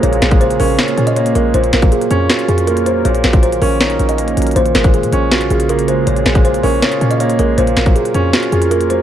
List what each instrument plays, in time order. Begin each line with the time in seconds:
Already playing: grand piano A#2 G#3 A#3 C#4 F4, ambient pad C#3 A#3 G#4
0.03 808-style bass A#1, grand piano A#2, kalimba C#5, closed hi-hat
0.13 closed hi-hat
0.22 808-style bass A#1, grand piano G#3, snare, closed hi-hat
0.31 kick, closed hi-hat
0.41 kalimba C5, closed hi-hat
0.50 closed hi-hat
0.60 808-style bass A#1, grand piano C#4, kalimba A#4, open hi-hat
0.79 grand piano F4, kalimba C#5, snare, closed hi-hat
0.88 closed hi-hat
0.97 808-style bass A#2, grand piano C#4, closed hi-hat
1.07 kalimba D#5, closed hi-hat
1.16 grand piano A#3, kalimba C#5, closed hi-hat
1.26 closed hi-hat
1.35 808-style bass A#1, grand piano G#3, kalimba A#4, closed hi-hat
1.54 808-style bass A#1, grand piano A#2, ambient pad F4 A#4, kalimba C5, closed hi-hat
1.64 closed hi-hat
1.73 808-style bass A#1, grand piano F#3, kalimba A#4, snare, closed hi-hat
1.82 kick, closed hi-hat
1.92 kalimba G#4, closed hi-hat
2.01 closed hi-hat
2.11 808-style bass F2, grand piano C#4, closed hi-hat
2.29 grand piano F4, kalimba F#4, snare, closed hi-hat
2.39 closed hi-hat
2.48 808-style bass F2, grand piano C#4, kalimba G#4, closed hi-hat
2.58 closed hi-hat
2.67 grand piano A#3, kalimba A#4, closed hi-hat
2.77 closed hi-hat
2.86 grand piano F#3, kalimba C5, closed hi-hat
3.05 808-style bass A#1, grand piano A#2, ambient pad D#3 C#4, kalimba C#5, closed hi-hat
3.15 closed hi-hat
3.24 808-style bass A#1, grand piano F#3, snare, closed hi-hat
3.33 kick, closed hi-hat
3.43 kalimba C5, closed hi-hat
3.52 closed hi-hat
3.62 808-style bass A#1, grand piano C#4, kalimba A#4, open hi-hat
3.81 grand piano D#4, kalimba C#5, snare, closed hi-hat
3.90 closed hi-hat
3.99 808-style bass A#1, grand piano C#4, closed hi-hat
4.09 kalimba D#5, closed hi-hat
4.18 grand piano A#3, closed hi-hat
4.28 closed hi-hat
4.37 808-style bass A#1, grand piano F#3, closed hi-hat
4.42 closed hi-hat
4.47 closed hi-hat
4.51 closed hi-hat
4.56 808-style bass A#1, grand piano A#2, ambient pad C#3 A#3 G#4, kalimba C5, closed hi-hat
4.66 closed hi-hat
4.75 808-style bass G#1, grand piano G#3, kalimba A#4, snare, closed hi-hat
4.84 kick, closed hi-hat
4.94 kalimba G#4, closed hi-hat
5.03 808-style bass A#2, closed hi-hat
5.13 808-style bass A#1, grand piano C#4, closed hi-hat
5.31 grand piano F4, kalimba F#4, snare, closed hi-hat
5.41 closed hi-hat
5.50 808-style bass A#1, grand piano C#4, kalimba G#4, closed hi-hat
5.60 closed hi-hat
5.69 grand piano A#3, kalimba A#4, closed hi-hat
5.79 closed hi-hat
5.88 grand piano G#3, kalimba C5, closed hi-hat
6.07 808-style bass A#1, grand piano A#2, kalimba C#5, closed hi-hat
6.16 closed hi-hat
6.26 808-style bass A#1, grand piano G#3, snare, closed hi-hat
6.35 kick, closed hi-hat
6.45 kalimba C5, closed hi-hat
6.54 closed hi-hat
6.63 808-style bass A#1, grand piano C#4, kalimba A#4, open hi-hat
6.82 grand piano F4, kalimba C#5, snare, closed hi-hat
6.92 closed hi-hat
7.01 808-style bass A#2, grand piano C#4, closed hi-hat
7.11 kalimba D#5, closed hi-hat
7.20 grand piano A#3, kalimba C#5, closed hi-hat
7.30 closed hi-hat
7.39 808-style bass A#1, grand piano G#3, kalimba A#4, closed hi-hat
7.58 808-style bass A#1, grand piano A#2, ambient pad F4 A#4, kalimba C5, closed hi-hat
7.67 closed hi-hat
7.77 808-style bass A#1, grand piano F#3, kalimba A#4, snare, closed hi-hat
7.86 kick, closed hi-hat
7.96 kalimba G#4, closed hi-hat
8.05 closed hi-hat
8.14 808-style bass F2, grand piano C#4, closed hi-hat
8.33 grand piano F4, kalimba F#4, snare, closed hi-hat
8.43 closed hi-hat
8.52 808-style bass F2, grand piano C#4, kalimba G#4, closed hi-hat
8.62 closed hi-hat
8.71 grand piano A#3, kalimba A#4, closed hi-hat
8.81 closed hi-hat
8.90 grand piano F#3, kalimba C5, closed hi-hat